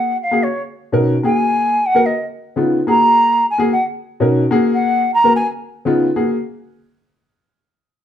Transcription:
Already playing: F#4 G#4 F#5
0.23 F5
0.31 A#3 F#4 G#4
0.43 C#5
0.92 B2 C#4 D#4 A#4
1.23 A#3 F#4 G#4 G#5
1.86 F#5
1.95 A#3 F#4 A#4
2.06 D#5
2.56 C#3 B3 D#4 F4
2.87 A#3 F#4 G#4 A#5
3.51 G#5
3.58 A#3 F#4 G#4
3.73 F#5
4.20 B2 C#4 D#4 A#4
4.51 A#3 F#4 G#4
4.74 F#5
5.14 A#5
5.24 A#3 F#4 A#4
5.36 G#5
5.85 C#3 B3 D#4 F4
6.16 A#3 F#4 G#4

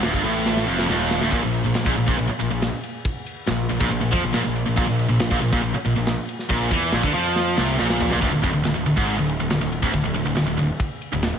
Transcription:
0.03 D1 D2, snare, ride
0.14 G1 G2, kick
0.24 A1 A2, ride
0.46 snare
0.57 snare
0.67 F1 F2
0.79 snare
0.89 D#1 D#2, snare
1.11 snare
1.21 D1 D2, snare
1.32 A#1 A#2, kick, crash
1.43 A#1 A#2
1.54 ride
1.64 A#1 A#2
1.74 A#1 A#2, snare, ride
1.84 A#1 A#2, kick
1.96 A#1 A#2, ride
2.06 A#1 A#2, kick
2.17 A#1 A#2, ride
2.27 muted distorted electric guitar stroke
2.32 muted picked electric bass stroke
2.40 A#1 A#2, ride
2.50 A#1 A#2
2.62 snare, ride
2.83 ride
3.05 kick, ride
3.26 ride
3.47 A#1 A#2, snare, ride
3.69 A#1 A#2, ride
3.80 A#1 A#2, kick
3.90 A#1 A#2, ride
4.01 A#1 A#2
4.12 F2 F3, kick, ride
4.22 A#1 A#2
4.33 A#1 A#2, snare, ride
4.44 A#1 A#2
4.56 ride
4.66 A#1 A#2
4.76 A#1 A#2, kick, crash
4.88 A#1 A#2
4.99 ride
5.09 A#1 A#2
5.20 A#1 A#2, snare, ride
5.30 A#1 A#2, kick
5.42 A#1 A#2, ride
5.53 A#1 A#2, kick
5.62 A#1 A#2, ride
5.74 muted distorted electric guitar stroke, muted picked electric bass stroke
5.85 A#1 A#2, ride
5.96 A#1 A#2
6.07 snare, ride
6.29 ride
6.39 snare
6.49 A#1 A#2, kick, ride
6.71 E2 E3, kick, ride
6.92 A#1 A#2, snare, ride
7.03 D2 D3, kick
7.14 F2 F3, ride
7.36 snare
7.56 C2 C3, snare
7.78 A#1 A#2, snare
7.90 snare
8.01 floor tom
8.10 A#1 A#2, snare
8.21 D1 D2, kick, ride
8.32 D1 D2
8.42 F1 F2, kick, ride
8.53 D1 D2
8.65 D1 D2, snare, ride
8.76 D1 D2
8.86 D1 D2, ride
8.97 G#1 G#2, kick
9.08 ride
9.19 D1 D2
9.29 ride
9.40 D1 D2
9.50 D1 D2, snare, ride
9.61 D1 D2
9.72 ride
9.82 D1 D2, kick
9.94 D1 D2, kick, ride
10.05 D1 D2
10.15 D1 D2, ride
10.26 D1 D2
10.37 D1 D2, snare, ride
10.47 D1 D2
10.59 D1 D2, ride
10.80 kick, ride
11.02 ride
11.13 D1 D2
11.23 snare, ride

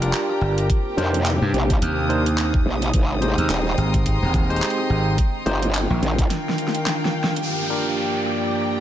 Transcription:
Already playing: F1 G3 F4 G4 A#4 D5 G5 A#5
0.02 D4 F4 G4 A#4, closed hi-hat
0.13 clap, closed hi-hat
0.30 cross-stick
0.41 G1
0.58 closed hi-hat
0.69 C3 A#3 C4 D4 D#4, kick, closed hi-hat
0.97 F2 D4 D#4 A#4 C5, closed hi-hat
1.14 closed hi-hat
1.26 clap, closed hi-hat
1.42 G2
1.53 A#1, closed hi-hat
1.70 D#6, kick, closed hi-hat
1.82 D#2, closed hi-hat
2.09 D4 D#4 A#4 C5, closed hi-hat
2.26 closed hi-hat
2.38 clap, closed hi-hat
2.54 kick
2.66 A#1
2.82 closed hi-hat
2.93 G#1 G#3 C4 G5, kick, closed hi-hat
3.21 D#4 G4 G#4 C5, closed hi-hat
3.27 A#5
3.38 D#2, closed hi-hat
3.48 D#1 C6, clap, closed hi-hat
3.78 G#1, cross-stick, closed hi-hat
3.84 cross-stick
3.87 cross-stick
3.94 kick, cross-stick, closed hi-hat
3.96 cross-stick
4.02 kick, cross-stick, closed hi-hat
4.22 D#1
4.34 kick, cross-stick, closed hi-hat
4.50 D#4 G4 G#4 C5, closed hi-hat
4.56 closed hi-hat
4.62 clap, closed hi-hat
4.70 closed hi-hat
4.78 cross-stick
4.90 G#1
5.18 D#3 D4 F4, kick, closed hi-hat
5.46 G1 D#4 F4 G4 C5, closed hi-hat
5.53 G5
5.59 F5, closed hi-hat
5.67 A#4
5.74 clap, closed hi-hat
5.90 A#1
6.02 A#1, closed hi-hat
6.19 kick, closed hi-hat
6.30 snare, closed hi-hat
6.49 snare
6.58 closed hi-hat
6.68 snare
6.75 closed hi-hat
6.86 snare, clap, closed hi-hat
7.05 snare
7.24 snare
7.36 closed hi-hat
7.42 G2 F3 A#3 G4, downlifter
7.61 D5
7.70 D4 F4 G4 A#4
8.26 cross-stick
8.45 A#5

